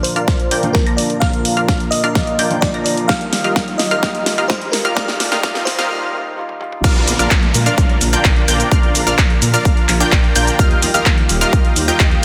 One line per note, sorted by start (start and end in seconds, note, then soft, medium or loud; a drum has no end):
0.00 0.60 A#2 medium
0.00 3.05 D3 medium
0.00 0.60 F3 medium
0.00 3.05 F3 medium
0.00 0.60 A#3 medium
0.00 5.86 A#3 medium
0.00 0.61 D4 medium
0.00 0.61 F4 medium
0.00 3.05 F4 medium
0.00 5.86 A#4 medium
0.00 0.76 C5 loud
0.00 riser medium
0.04 open hi-hat loud
0.16 0.48 D4 medium
0.16 0.48 F4 medium
0.16 0.49 A#4 medium
0.16 0.48 D5 medium
0.16 0.48 F5 loud
0.16 0.49 F6 loud
0.16 closed hi-hat soft
0.28 kick loud
0.28 snare soft
0.28 closed hi-hat medium
0.40 closed hi-hat soft
0.51 0.84 D4 medium
0.51 0.84 F4 medium
0.51 0.84 A#4 medium
0.51 0.84 D5 medium
0.51 0.84 G5 loud
0.51 0.84 G6 loud
0.51 open hi-hat loud
0.62 0.72 A#2 medium
0.62 0.72 F3 medium
0.62 0.72 A#3 medium
0.62 0.72 D4 medium
0.62 0.72 F4 loud
0.62 closed hi-hat soft
0.73 1.19 F3 medium
0.73 1.19 A#3 medium
0.73 1.19 D4 medium
0.73 0.84 A#4 loud
0.73 kick loud
0.73 snare medium
0.73 closed hi-hat medium
0.86 1.19 D4 medium
0.86 1.19 F4 medium
0.86 1.19 A#4 medium
0.86 1.19 D5 medium
0.86 1.19 A#5 medium
0.86 1.19 A#6 medium
0.86 closed hi-hat soft
0.97 1.08 D5 medium
0.97 open hi-hat loud
1.10 closed hi-hat soft
1.20 2.47 A#2 medium
1.20 2.48 D3 medium
1.20 2.48 F3 medium
1.20 2.48 A#3 medium
1.20 1.51 D4 medium
1.20 1.51 F4 medium
1.20 1.51 A#4 medium
1.20 1.51 D5 medium
1.20 1.87 F5 loud
1.20 1.51 F5 loud
1.20 1.51 F6 loud
1.20 kick loud
1.20 snare medium
1.20 closed hi-hat medium
1.33 closed hi-hat soft
1.45 open hi-hat loud
1.57 1.75 D4 medium
1.57 1.75 F4 medium
1.57 1.75 A#4 medium
1.57 1.75 D5 medium
1.57 1.75 F5 medium
1.57 1.75 F6 medium
1.57 closed hi-hat soft
1.68 kick loud
1.68 snare medium
1.68 closed hi-hat medium
1.80 closed hi-hat soft
1.91 2.64 D#5 loud
1.91 open hi-hat loud
2.04 2.36 D4 medium
2.04 2.36 F4 medium
2.04 2.36 A#4 medium
2.04 2.36 D5 medium
2.04 2.36 F5 loud
2.04 2.36 F6 loud
2.04 closed hi-hat soft
2.15 kick loud
2.15 snare medium
2.15 closed hi-hat medium
2.27 closed hi-hat soft
2.39 2.71 D4 loud
2.39 2.71 F4 medium
2.39 2.71 A#4 medium
2.39 2.71 D5 medium
2.39 2.71 G5 loud
2.39 2.71 G6 loud
2.39 open hi-hat loud
2.50 2.59 A#2 medium
2.50 2.59 F3 medium
2.50 2.60 A#3 medium
2.50 2.60 D4 medium
2.50 2.60 F4 loud
2.50 closed hi-hat soft
2.61 3.06 F3 medium
2.61 3.07 D4 medium
2.61 3.07 F4 loud
2.61 2.72 D5 loud
2.61 kick loud
2.61 snare medium
2.61 closed hi-hat medium
2.74 3.06 D4 medium
2.74 3.06 F4 medium
2.74 3.06 A#4 medium
2.74 3.06 D5 medium
2.74 3.06 A#5 medium
2.74 3.06 A#6 medium
2.74 closed hi-hat soft
2.84 3.09 D5 medium
2.84 open hi-hat loud
2.97 closed hi-hat soft
3.08 5.88 D#3 medium
3.08 4.00 G3 medium
3.08 5.88 G3 medium
3.08 5.88 F4 medium
3.08 3.38 F4 medium
3.08 3.38 G4 medium
3.08 3.38 A#4 medium
3.08 3.38 D#5 medium
3.08 3.81 F5 loud
3.08 3.38 F5 medium
3.08 3.38 F6 medium
3.08 kick loud
3.08 snare medium
3.08 closed hi-hat medium
3.21 closed hi-hat soft
3.33 snare medium
3.33 open hi-hat loud
3.44 3.63 F4 medium
3.44 3.63 G4 medium
3.44 3.63 A#4 medium
3.44 3.63 D#5 medium
3.44 3.63 F5 medium
3.44 3.63 F6 medium
3.44 closed hi-hat soft
3.56 kick loud
3.56 snare medium
3.56 closed hi-hat medium
3.68 closed hi-hat soft
3.78 4.51 D#5 loud
3.78 snare medium
3.78 open hi-hat loud
3.91 4.01 F4 medium
3.91 4.01 G4 medium
3.91 4.01 A#4 medium
3.91 4.01 D#5 medium
3.91 4.01 F5 medium
3.91 4.01 F6 medium
3.91 closed hi-hat soft
4.02 4.94 G3 medium
4.02 4.95 A#3 medium
4.02 4.95 D#4 medium
4.02 4.32 F4 medium
4.02 4.95 F4 medium
4.02 4.32 G4 medium
4.02 4.32 A#4 medium
4.02 4.32 D#5 medium
4.02 4.32 F5 loud
4.02 4.32 F6 medium
4.02 kick loud
4.02 snare medium
4.02 closed hi-hat medium
4.15 closed hi-hat soft
4.26 snare medium
4.26 open hi-hat loud
4.38 4.56 F4 medium
4.38 4.56 G4 medium
4.38 4.56 A#4 medium
4.38 4.56 D#5 medium
4.38 4.56 F5 medium
4.38 4.56 F6 medium
4.38 closed hi-hat soft
4.48 4.73 C5 loud
4.48 kick loud
4.48 snare medium
4.48 closed hi-hat medium
4.62 closed hi-hat soft
4.72 4.97 A#4 medium
4.72 snare medium
4.72 open hi-hat loud
4.85 4.95 F4 medium
4.85 4.95 G4 medium
4.85 4.95 A#4 medium
4.85 4.95 D#5 medium
4.85 4.95 F5 loud
4.85 4.95 F6 loud
4.85 closed hi-hat soft
4.95 5.41 G3 medium
4.95 5.41 A#3 medium
4.95 5.42 D#4 medium
4.95 5.26 F4 medium
4.95 5.42 F4 medium
4.95 5.26 G4 medium
4.95 5.26 A#4 medium
4.95 5.68 D5 medium
4.95 5.26 D#5 medium
4.95 5.26 F5 medium
4.95 5.26 F6 loud
4.95 kick loud
4.95 snare medium
4.95 closed hi-hat medium
5.08 snare medium
5.08 closed hi-hat soft
5.20 snare medium
5.20 open hi-hat loud
5.32 5.42 F4 medium
5.32 5.42 G4 medium
5.32 5.42 A#4 medium
5.32 5.42 D#5 medium
5.32 5.42 F5 medium
5.32 5.42 F6 medium
5.32 snare medium
5.32 closed hi-hat soft
5.42 5.88 G3 medium
5.42 5.88 A#3 medium
5.42 5.89 D#4 medium
5.42 5.73 F4 medium
5.42 5.89 F4 loud
5.42 5.73 G4 medium
5.42 5.73 A#4 medium
5.42 5.73 D#5 medium
5.42 5.73 F5 loud
5.42 5.73 F6 loud
5.42 kick loud
5.42 snare medium
5.42 closed hi-hat medium
5.55 snare medium
5.55 closed hi-hat soft
5.65 5.90 C5 medium
5.65 snare loud
5.65 open hi-hat loud
5.79 5.89 F4 medium
5.79 5.89 G4 medium
5.79 5.89 A#4 medium
5.79 5.89 D#5 medium
5.79 5.89 F5 medium
5.79 5.88 F6 medium
5.79 snare medium
5.79 closed hi-hat soft
5.89 6.11 G3 medium
5.89 6.12 A#3 medium
5.89 6.12 D#4 medium
5.89 6.13 F4 medium
6.13 6.35 G3 medium
6.13 6.35 A#3 medium
6.13 6.36 D#4 medium
6.13 6.36 F4 medium
6.36 6.58 G3 medium
6.36 6.59 A#3 medium
6.36 6.59 D#4 medium
6.36 6.60 F4 medium
6.49 high tom medium
6.60 6.82 G3 medium
6.60 6.82 A#3 medium
6.60 6.83 D#4 medium
6.60 6.83 F4 medium
6.60 mid tom medium
6.72 mid tom medium
6.84 6.99 A#1 loud
6.84 10.55 D3 medium
6.84 10.55 F3 medium
6.84 12.25 A#3 medium
6.84 7.13 D4 medium
6.84 7.13 F4 medium
6.84 12.25 F4 medium
6.84 7.13 A#4 medium
6.84 10.55 A#4 medium
6.84 7.13 D5 medium
6.84 7.13 F5 loud
6.84 7.13 F6 loud
6.84 kick loud
6.84 closed hi-hat medium
6.84 crash loud
6.84 downlifter medium
6.84 shaker soft
6.96 closed hi-hat soft
7.08 7.15 A#1 medium
7.08 open hi-hat loud
7.08 shaker medium
7.19 7.27 A#1 medium
7.19 7.37 D4 medium
7.19 7.37 F4 medium
7.19 7.37 A#4 medium
7.19 7.37 D5 medium
7.19 7.37 F5 medium
7.19 7.38 F6 medium
7.19 closed hi-hat medium
7.19 shaker soft
7.31 7.45 A#1 medium
7.31 kick loud
7.31 clap loud
7.31 closed hi-hat medium
7.31 shaker soft
7.43 closed hi-hat soft
7.54 7.69 A#2 medium
7.54 open hi-hat loud
7.54 shaker medium
7.66 7.99 D4 medium
7.66 7.99 F4 medium
7.66 7.99 A#4 medium
7.66 7.99 D5 medium
7.66 7.99 F5 loud
7.66 7.99 F6 medium
7.66 closed hi-hat medium
7.66 shaker soft
7.78 7.85 A#1 loud
7.78 kick loud
7.78 closed hi-hat medium
7.78 shaker soft
7.89 closed hi-hat soft
8.01 8.16 A#1 medium
8.01 open hi-hat loud
8.01 shaker medium
8.13 8.45 D4 medium
8.13 8.45 F4 medium
8.13 8.45 A#4 medium
8.13 8.45 D5 medium
8.13 8.45 G5 loud
8.13 8.45 G6 loud
8.13 closed hi-hat medium
8.13 shaker soft
8.25 8.39 A#1 loud
8.25 kick loud
8.25 clap loud
8.25 closed hi-hat medium
8.25 shaker soft
8.36 closed hi-hat soft
8.48 8.63 A#1 loud
8.48 8.69 D4 medium
8.48 8.69 F4 medium
8.48 8.69 A#4 medium
8.48 8.69 D5 medium
8.48 8.69 G5 loud
8.48 8.69 G6 loud
8.48 open hi-hat loud
8.48 shaker medium
8.60 closed hi-hat medium
8.60 shaker soft
8.71 8.86 A#1 loud
8.71 9.01 D4 medium
8.71 9.01 F4 medium
8.71 9.01 A#4 medium
8.71 9.01 D5 medium
8.71 9.01 F5 medium
8.71 9.01 F6 loud
8.71 kick loud
8.71 closed hi-hat medium
8.71 shaker soft
8.83 closed hi-hat soft
8.95 9.02 A#1 medium
8.95 open hi-hat loud
8.95 shaker medium
9.07 9.14 A#1 medium
9.07 9.25 D4 medium
9.07 9.25 F4 medium
9.07 9.25 A#4 medium
9.07 9.25 D5 medium
9.07 9.25 F5 medium
9.07 9.25 F6 loud
9.07 closed hi-hat medium
9.07 shaker soft
9.18 9.33 A#1 medium
9.18 kick loud
9.18 clap loud
9.18 closed hi-hat medium
9.18 shaker soft
9.30 closed hi-hat soft
9.42 9.56 A#2 medium
9.42 open hi-hat loud
9.42 shaker medium
9.54 9.86 D4 medium
9.54 9.86 F4 medium
9.54 9.86 A#4 medium
9.54 9.86 D5 medium
9.54 9.86 F5 loud
9.54 9.86 F6 loud
9.54 closed hi-hat medium
9.54 shaker soft
9.65 9.73 A#1 loud
9.65 kick loud
9.65 closed hi-hat medium
9.65 shaker soft
9.77 closed hi-hat soft
9.89 10.03 A#1 medium
9.89 clap medium
9.89 open hi-hat loud
9.89 shaker medium
10.00 10.33 D4 medium
10.00 10.33 F4 medium
10.00 10.33 A#4 medium
10.00 10.33 D5 medium
10.00 10.33 G5 loud
10.00 10.33 G6 loud
10.00 closed hi-hat medium
10.00 shaker soft
10.12 10.27 A#1 loud
10.12 kick loud
10.12 clap loud
10.12 closed hi-hat medium
10.12 shaker soft
10.24 closed hi-hat soft
10.36 10.50 A#1 loud
10.36 10.56 D4 medium
10.36 10.56 F4 medium
10.36 10.56 A#4 medium
10.36 10.56 D5 medium
10.36 10.56 G5 loud
10.36 10.56 G6 loud
10.36 open hi-hat loud
10.36 shaker medium
10.47 closed hi-hat medium
10.47 shaker soft
10.59 10.74 D#2 loud
10.59 12.25 D#3 medium
10.59 12.25 G3 medium
10.59 10.88 F4 medium
10.59 10.88 G4 medium
10.59 12.25 G4 medium
10.59 10.88 A#4 medium
10.59 10.88 D#5 medium
10.59 10.88 F5 loud
10.59 10.88 F6 loud
10.59 kick loud
10.59 closed hi-hat medium
10.59 shaker soft
10.71 closed hi-hat soft
10.82 10.90 D#2 medium
10.82 open hi-hat loud
10.82 shaker medium
10.94 11.02 D#2 loud
10.94 11.13 F4 medium
10.94 11.13 G4 medium
10.94 11.13 A#4 medium
10.94 11.13 D#5 medium
10.94 11.13 F5 medium
10.94 11.13 F6 medium
10.94 closed hi-hat medium
10.94 shaker soft
11.06 11.20 D#2 medium
11.06 kick loud
11.06 clap loud
11.06 closed hi-hat medium
11.06 shaker soft
11.18 closed hi-hat soft
11.29 11.44 D#1 medium
11.29 open hi-hat loud
11.29 shaker medium
11.41 11.74 F4 loud
11.41 11.74 G4 medium
11.41 11.74 A#4 medium
11.41 11.74 D#5 medium
11.41 11.74 F5 loud
11.41 11.74 F6 loud
11.41 closed hi-hat medium
11.41 shaker soft
11.53 11.60 D#2 loud
11.53 kick loud
11.53 closed hi-hat medium
11.53 shaker soft
11.65 closed hi-hat soft
11.76 11.91 D#2 medium
11.76 open hi-hat loud
11.76 shaker medium
11.88 12.20 F4 medium
11.88 12.20 G4 medium
11.88 12.20 A#4 medium
11.88 12.20 D#5 medium
11.88 12.20 G5 loud
11.88 12.20 G6 loud
11.88 closed hi-hat medium
11.88 shaker soft
12.00 12.14 D#2 loud
12.00 kick loud
12.00 clap loud
12.00 closed hi-hat medium
12.00 shaker soft
12.11 closed hi-hat soft